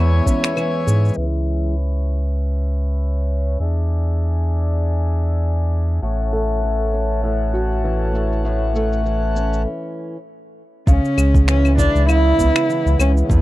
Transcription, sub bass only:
0.00 0.21 E2 medium
0.87 1.11 G#2 medium
1.17 3.57 C#2 medium
3.60 5.99 E2 medium
6.02 9.66 A1 medium
10.87 11.00 C#2 loud
11.17 11.88 C#2 medium
11.95 12.33 C#2 loud
12.39 12.51 C#2 medium
12.86 12.96 C#2 loud
12.99 13.23 C#2 medium
13.30 13.41 E2 loud

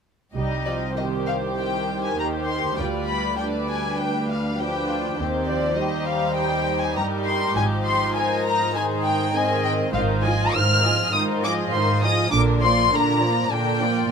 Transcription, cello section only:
0.36 2.14 C2 soft
2.18 2.78 D#2 soft
2.78 5.14 D2 soft
5.19 6.94 D#2 soft
6.98 7.57 G2 soft
7.57 9.90 G#2 soft
9.94 10.48 G#2 medium
10.55 11.07 G#2 medium
11.14 11.66 G#2 medium
11.72 12.25 G#2 medium
12.32 12.85 A#2 medium
12.91 13.45 A#2 medium
13.51 14.04 A#2 soft

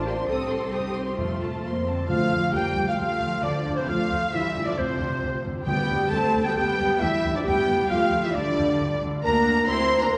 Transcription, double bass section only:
0.00 0.22 A1 medium
0.27 0.68 C2 medium
0.73 1.13 C2 soft
1.19 1.59 F2 soft
1.63 2.04 F2 soft
2.09 2.17 D2 medium
2.31 2.39 D2 medium
2.53 2.61 D2 medium
2.75 2.83 D2 medium
2.98 3.06 D2 medium
3.21 3.29 D2 medium
3.42 3.50 D2 medium
3.66 3.74 D2 medium
3.88 3.96 D2 medium
4.11 4.19 D2 medium
4.33 4.41 D2 medium
4.54 4.62 D2 medium
4.77 4.85 D2 medium
4.99 5.07 D2 medium
5.22 5.30 D2 medium
5.45 5.53 D2 medium
5.67 5.75 D2 medium
5.90 5.98 D2 medium
6.12 6.20 D2 medium
6.35 6.43 D2 medium
6.57 6.65 D2 medium
6.80 6.88 D2 medium
7.01 7.09 D2 medium
7.24 7.32 D2 medium
7.47 7.55 D2 medium
7.70 7.78 D2 medium
7.91 7.99 D2 medium
8.12 8.20 D2 medium
8.35 8.43 D2 medium
8.57 8.65 D2 medium
8.80 8.88 D2 medium
9.01 9.09 D2 medium
9.24 9.63 D2 medium
9.67 10.07 D2 medium
10.13 10.18 D2 medium

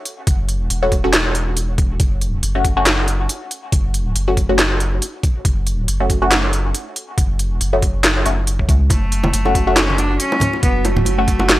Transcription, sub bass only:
0.27 0.69 F#1 loud
0.70 1.98 E1 loud
2.00 2.41 F#1 loud
2.43 3.28 F#1 medium
3.72 4.14 F#1 loud
4.16 5.00 F#1 loud
5.45 5.87 F#1 loud
5.88 6.73 F#1 loud
7.18 7.59 F#1 loud
7.61 8.24 F#1 loud
8.26 8.67 F#1 medium
8.69 8.89 C#2 loud
8.90 9.32 F#1 loud
9.33 10.18 F#1 loud
10.63 11.05 F#1 loud
11.06 11.60 F#1 loud

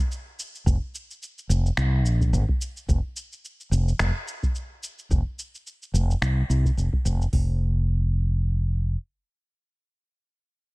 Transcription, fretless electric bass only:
0.66 0.77 F1 medium
1.49 1.69 F1 medium
1.77 2.05 C2 medium
2.05 2.35 A#1 medium
2.33 2.43 G#1 medium
2.89 2.99 F1 medium
3.71 3.91 F1 medium
4.00 4.10 F1 medium
5.11 5.21 F1 medium
5.94 6.14 F1 medium
6.22 6.41 C2 medium
6.50 6.69 C2 medium
6.77 6.88 F1 medium
7.05 7.25 F1 medium
7.33 8.95 F1 medium

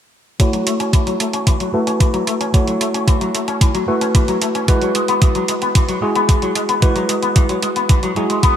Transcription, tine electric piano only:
0.40 1.71 A3 medium
0.40 1.71 E4 medium
0.40 1.71 F#4 medium
0.40 1.70 C#5 medium
1.74 2.51 A3 medium
1.74 2.51 E4 medium
1.74 2.51 F#4 medium
1.74 2.51 B4 medium
2.54 3.85 A3 medium
2.54 3.85 E4 medium
2.54 3.85 F#4 medium
2.54 3.85 C#5 medium
3.88 4.65 A3 medium
3.88 4.65 E4 medium
3.88 4.65 F#4 medium
3.88 4.65 B4 medium
4.68 5.99 G#3 medium
4.68 5.99 E4 medium
4.68 5.99 F#4 medium
4.68 5.99 B4 loud
6.02 6.79 G#3 medium
6.02 6.79 E4 medium
6.02 6.79 F#4 medium
6.02 6.79 G#4 medium
6.82 8.13 G#3 medium
6.82 8.13 E4 medium
6.82 8.13 F#4 medium
6.82 8.13 B4 medium
8.16 8.57 G#3 medium
8.16 8.57 E4 medium
8.16 8.57 F#4 medium
8.16 8.57 G#4 medium

